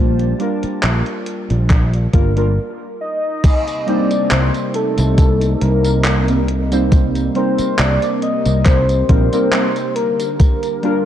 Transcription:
0.00 0.32 A#1 loud
0.00 0.35 G3 medium
0.00 0.35 A#3 medium
0.00 0.35 D4 medium
0.00 0.35 F4 medium
0.00 2.53 G4 medium
0.00 0.35 C5 loud
0.00 2.53 D5 medium
0.00 2.53 F5 medium
0.00 2.54 A5 medium
0.20 closed hi-hat soft
0.39 2.08 G3 medium
0.39 2.09 A#3 medium
0.39 2.09 D4 medium
0.39 2.10 F4 medium
0.39 2.10 A#4 medium
0.39 closed hi-hat soft
0.63 muted fretless electric bass stroke soft
0.63 closed hi-hat soft
0.83 1.01 A#1 loud
0.83 clap loud
0.83 closed hi-hat loud
1.06 closed hi-hat soft
1.26 closed hi-hat medium
1.50 2.06 A#1 loud
1.50 closed hi-hat soft
1.70 kick loud
1.70 clap medium
1.70 closed hi-hat loud
1.93 closed hi-hat soft
2.13 2.57 G1 medium
2.13 2.31 G3 medium
2.13 2.31 A#3 medium
2.13 2.32 D4 medium
2.13 2.32 F4 medium
2.13 2.32 A#4 loud
2.13 kick loud
2.13 closed hi-hat medium
2.36 2.52 G3 medium
2.36 2.52 A#3 medium
2.36 2.52 D4 medium
2.36 2.52 F4 medium
2.36 2.53 A#4 loud
2.36 closed hi-hat soft
3.01 3.90 D#5 loud
3.44 9.92 C3 medium
3.44 11.05 G3 medium
3.44 11.05 A#3 medium
3.44 9.93 D#4 medium
3.44 kick loud
3.44 closed hi-hat loud
3.44 tambourine soft
3.44 crash loud
3.68 closed hi-hat soft
3.68 tambourine soft
3.86 6.22 G3 loud
3.86 6.22 A#3 medium
3.86 6.23 C4 medium
3.86 6.23 D#4 medium
3.86 6.24 C5 loud
3.86 4.33 D5 loud
3.86 closed hi-hat soft
4.11 closed hi-hat soft
4.11 tambourine medium
4.31 4.49 C2 loud
4.31 4.77 C5 loud
4.31 clap loud
4.31 closed hi-hat loud
4.31 tambourine soft
4.54 closed hi-hat soft
4.54 tambourine soft
4.74 5.63 A4 loud
4.74 closed hi-hat medium
4.98 5.54 C2 medium
4.98 closed hi-hat soft
4.98 tambourine medium
5.18 kick loud
5.18 closed hi-hat loud
5.18 tambourine soft
5.41 closed hi-hat soft
5.41 tambourine soft
5.61 7.28 C2 medium
5.61 6.49 A#4 medium
5.61 closed hi-hat medium
5.85 closed hi-hat soft
5.85 tambourine medium
6.04 clap loud
6.04 closed hi-hat medium
6.04 tambourine soft
6.28 6.46 G3 medium
6.28 6.46 A#3 medium
6.28 6.46 C4 medium
6.28 6.47 D#4 medium
6.28 6.47 A#4 medium
6.28 closed hi-hat soft
6.28 tambourine soft
6.48 closed hi-hat medium
6.71 7.30 G3 medium
6.71 7.31 A#3 medium
6.71 7.31 C4 medium
6.71 7.31 D#4 medium
6.71 7.31 C5 loud
6.71 closed hi-hat soft
6.71 tambourine medium
6.92 kick loud
6.92 closed hi-hat loud
6.92 tambourine soft
7.15 closed hi-hat soft
7.15 tambourine soft
7.34 9.04 G3 medium
7.34 9.04 A#3 medium
7.34 9.05 C4 medium
7.34 9.05 D#4 medium
7.34 9.06 A#4 medium
7.34 7.81 C5 medium
7.34 closed hi-hat soft
7.58 muted fretless electric bass stroke soft
7.58 closed hi-hat soft
7.58 tambourine medium
7.79 7.97 C2 loud
7.79 8.24 D5 loud
7.79 clap loud
7.79 closed hi-hat loud
7.79 tambourine soft
8.02 closed hi-hat soft
8.02 tambourine soft
8.22 8.67 D#5 medium
8.22 closed hi-hat medium
8.45 9.02 C2 loud
8.45 closed hi-hat soft
8.45 tambourine medium
8.65 9.08 C5 loud
8.65 kick loud
8.65 clap medium
8.65 closed hi-hat loud
8.65 tambourine soft
8.89 closed hi-hat soft
8.89 tambourine soft
9.09 9.27 A#1 medium
9.09 9.27 G3 medium
9.09 9.27 A#3 medium
9.09 9.27 C4 medium
9.09 9.28 D#4 medium
9.09 9.28 A#4 loud
9.09 9.97 C5 loud
9.09 kick loud
9.09 closed hi-hat medium
9.32 9.48 G3 loud
9.32 9.48 A#3 medium
9.32 9.48 C4 medium
9.32 9.48 D#4 medium
9.32 9.48 A#4 loud
9.32 closed hi-hat soft
9.32 tambourine medium
9.52 9.66 G3 medium
9.52 9.66 A#3 medium
9.52 9.66 C4 medium
9.52 9.66 D#4 medium
9.52 9.66 C5 loud
9.52 clap loud
9.52 closed hi-hat medium
9.52 tambourine soft
9.76 closed hi-hat soft
9.76 tambourine soft
9.96 11.05 D3 medium
9.96 10.38 A#4 medium
9.96 closed hi-hat medium
10.20 closed hi-hat soft
10.20 tambourine medium
10.39 11.05 A#4 loud
10.39 kick loud
10.39 closed hi-hat medium
10.39 tambourine soft
10.63 closed hi-hat soft
10.63 tambourine soft
10.82 11.05 G3 loud
10.82 11.05 A#3 medium
10.82 11.05 D4 medium
10.82 11.05 F4 loud
10.82 11.05 A#4 loud
10.82 closed hi-hat soft

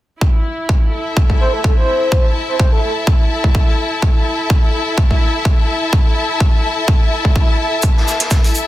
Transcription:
0.21 8.67 E4 medium
0.21 kick loud
0.69 kick loud
0.79 8.67 A4 medium
1.00 8.67 E5 medium
1.17 kick loud
1.30 kick medium
1.40 1.51 C5 medium
1.53 1.60 A4 medium
1.64 1.73 A4 medium
1.64 kick loud
1.77 2.25 C5 medium
2.08 8.67 A5 medium
2.08 kick loud
2.49 2.56 C5 medium
2.59 2.68 C5 medium
2.59 kick loud
2.72 2.79 A4 medium
2.83 2.92 A4 medium
3.07 kick loud
3.44 kick medium
3.55 kick loud
4.02 kick loud
4.50 kick loud
4.98 kick loud
5.11 kick medium
5.45 kick loud
5.93 kick loud
6.40 kick loud
6.88 kick loud
7.25 kick medium
7.36 kick loud
7.82 kick loud
7.82 closed hi-hat soft
7.82 shaker medium
7.97 snare soft
8.06 snare soft
8.06 shaker medium
8.20 snare soft
8.20 closed hi-hat medium
8.31 kick loud
8.31 snare loud
8.31 closed hi-hat soft
8.31 shaker medium
8.44 closed hi-hat soft
8.55 shaker medium

